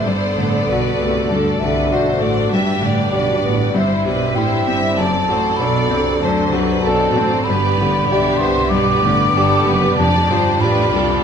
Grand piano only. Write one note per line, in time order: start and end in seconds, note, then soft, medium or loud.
0.07 0.67 G2 soft
0.38 0.69 D3 soft
0.69 0.97 D4 soft
0.69 0.97 F#4 soft
1.01 1.49 A3 soft
1.31 1.89 G2 soft
1.63 1.92 D3 soft
1.92 2.19 D4 soft
1.92 2.19 F#4 soft
2.22 2.52 A3 soft
2.53 2.82 G2 soft
2.82 3.31 D3 soft
3.12 3.41 D4 soft
3.12 3.41 G4 soft
3.45 3.75 B3 soft
3.75 4.04 G2 medium
4.06 4.55 G3 soft
4.36 4.64 E4 soft
4.36 4.64 G4 soft
4.67 4.98 C4 soft
4.97 5.58 F#2 soft
5.29 5.78 F#3 soft
5.60 5.87 D4 soft
5.60 5.88 A4 soft
5.90 6.40 C4 soft
6.21 6.82 F#2 soft
6.53 7.02 F#3 soft
6.86 7.13 D4 soft
6.86 7.13 A4 soft
7.17 7.47 C4 soft
7.50 7.78 G2 soft
7.81 8.29 D3 soft
8.12 8.38 D4 soft
8.12 8.38 G4 soft
8.40 8.90 B3 soft
8.71 9.01 G2 medium
9.04 9.53 D3 soft
9.37 9.63 D4 soft
9.37 9.64 G4 soft
9.67 9.98 B3 soft
10.00 10.59 F2 medium
10.31 10.80 F3 soft
10.63 10.90 D4 soft
10.63 10.90 G4 soft
10.93 11.24 G3 soft